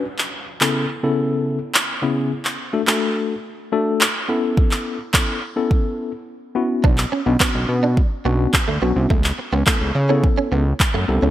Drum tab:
CP |-x--x-------x---|-x--x-------x---|-x--x-----------|-x--x-------x---|
BD |----------------|----------------|o---o---o-------|o---o---o---o---|

CP |-x--x-------x---|
BD |o---o---o---o---|